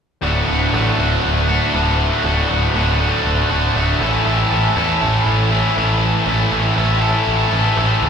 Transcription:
0.21 D1 D2 A2 D3 A3 F#4
0.48 D1 D3 A3 F#4
0.73 A1 A2 D3 A3 F#4
0.98 D1 D3 A3 F#4
1.23 D1
1.48 D3 A3 F#4
1.74 D1 D2 A2 D3 A3 F#4
2.23 D1 D2 A2 D3 A3 F#4
2.49 D1 D3 A3 F#4
2.74 D1 A2 D3 A3 F#4
2.99 D3 A3 F#4
3.25 D1
3.49 D1 D3 A3 F#4
3.74 D1 D2 A2 D3 A3 F#4
4.00 A1 A2 E3 A3 C#4 E4 A4
4.25 A1 A2 E3 A3 C#4 E4 A4
4.51 A1 A3 C#4 E4 A4
4.76 E2 A3 C#4 E4 A4
5.01 A1 A3 C#4 E4 A4
5.26 A1
5.50 A3 C#4 E4 A4
5.76 A1 A2 E3 A3 C#4 E4 A4
6.26 A1 A2 E3 A3 C#4 E4 A4
6.51 A1 A3 C#4 E4 A4
6.76 A1 A3 C#4 E4 A4
7.02 A3 C#4 E4 A4
7.27 A1
7.51 A1 A3 C#4 E4 A4
7.76 A1 A2 E3 A3 C#4 E4 A4
8.02 C#2

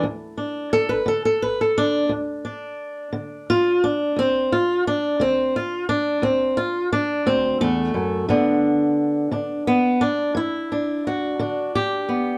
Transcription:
0.03 D2
0.37 D4
0.73 A4
0.89 B4
1.06 D3 A4
1.25 A4
1.42 B4
1.61 A4
1.78 D4
2.09 D2
2.45 D4
3.13 D3
3.50 F4
3.84 D4
4.16 D2 C4
4.52 F4
4.87 D4
5.20 D3 C4
5.56 F4
5.89 D4
6.22 D2 C4
6.57 F4
6.93 D4
7.26 D2 C4
7.61 E2 A3
7.94 F#2
8.29 G2 D3 B3 D4
9.31 D3 D4
9.67 B3
10.01 D4
10.35 G2 E4
10.72 D4
11.07 F#4
11.39 D3 D4
11.75 G4
12.09 B3

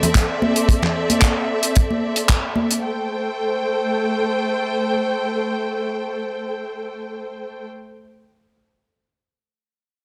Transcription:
Already playing: C4 A4 D5 E5
0.03 closed hi-hat, low conga
0.15 kick, clap, closed hi-hat
0.42 high conga
0.56 closed hi-hat
0.69 kick, closed hi-hat
0.82 clap, low conga
1.10 closed hi-hat, high conga
1.22 kick, clap, closed hi-hat
1.63 closed hi-hat
1.75 kick, closed hi-hat
1.91 high conga
2.16 closed hi-hat
2.29 kick, clap, closed hi-hat
2.56 high conga
2.71 closed hi-hat
2.83 A3 A4 C5 G5

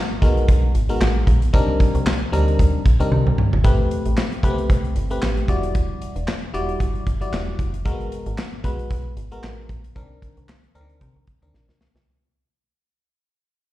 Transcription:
0.22 B1 G#3 B3 D#4 F#4 A#4, kick, closed hi-hat
0.37 closed hi-hat
0.48 B1, kick, closed hi-hat
0.74 G#1, closed hi-hat
0.89 G#3 B3 D#4 F#4 A#4, closed hi-hat
1.01 A1, snare, clap
1.27 A#1, kick, closed hi-hat
1.42 closed hi-hat
1.53 C2 G3 C4 D4 D#4 A#4, kick, closed hi-hat
1.80 kick, closed hi-hat
1.95 C2, closed hi-hat
2.06 snare, clap
2.32 D2 G3 C4 D4 D#4 A#4, closed hi-hat
2.48 closed hi-hat
2.59 D2, kick, closed hi-hat
2.85 A#1, kick, closed hi-hat
3.00 C2 G3 C4 D4 D#4 A#4, closed hi-hat
3.12 C3, high tom
3.27 C2, mid tom
3.38 mid tom
3.53 G1, floor tom
3.64 A1 A3 C4 G4 B4, kick, closed hi-hat
3.91 closed hi-hat
4.06 A1, closed hi-hat
4.17 snare, clap
4.32 closed hi-hat
4.43 C2 A3 B3 G4 B4, kick, closed hi-hat
4.50 C4
4.58 closed hi-hat
4.70 C2, kick, closed hi-hat
4.84 closed hi-hat
4.96 G1, closed hi-hat
5.10 A3 C4 G4 B4, closed hi-hat
5.22 A1, snare, clap
5.37 closed hi-hat
5.48 E1 G3 E4 F#4 D5, kick, closed hi-hat
5.63 closed hi-hat
5.75 kick, closed hi-hat
6.02 closed hi-hat
6.16 E1, closed hi-hat
6.28 snare, clap
6.54 E1 G3 E4 F#4 D5, closed hi-hat
6.69 closed hi-hat
6.80 G1, kick, closed hi-hat
6.95 closed hi-hat
7.07 G1, kick, closed hi-hat
7.21 G3 E4 F#4 D5, closed hi-hat
7.33 E1, snare, clap
7.59 F#1, kick, closed hi-hat
7.74 closed hi-hat
7.85 G#1 G#3 A#3 F#4 A#4, kick, closed hi-hat
7.92 B3
8.01 closed hi-hat
8.12 closed hi-hat
8.26 G#1, closed hi-hat
8.38 snare, clap
8.64 B1 G#3 B3 F#4 B4, kick, closed hi-hat
8.79 closed hi-hat
8.90 B1, kick, closed hi-hat
9.17 G#1, closed hi-hat
9.31 G#3 B3 F#4 A#4, closed hi-hat
9.43 A1, snare, clap
9.69 A#1, kick, closed hi-hat
9.84 closed hi-hat
9.95 C2 D#3 C4 D4 A#4, kick, closed hi-hat
10.22 kick, closed hi-hat
10.37 C2, closed hi-hat
10.49 snare, clap
10.64 closed hi-hat
10.75 D2 D3 C4 D4 A#4, closed hi-hat
10.81 D#3
10.89 closed hi-hat
11.01 C3, kick, closed hi-hat
11.16 C2
11.27 kick, closed hi-hat
11.42 D2 D#3 C4 D4 A#4, closed hi-hat
11.54 A#1, snare
11.68 C2, snare
11.81 snare
11.95 C2, snare

